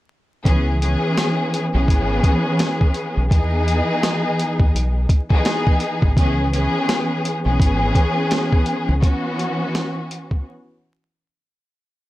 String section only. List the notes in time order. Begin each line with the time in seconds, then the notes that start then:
0.45 E3 B3 C#4 G#4
0.82 E3 B3 C#4 G#4
1.73 E3 B3 C#4 G#4
3.30 E3 B3 D#4 G#4
5.31 E3 B3 D#4 G#4
6.16 E3 B3 C#4 G#4
6.53 E3 B3 C#4 G#4
7.45 E3 B3 C#4 G#4
9.02 E3 B3 C#4 F#4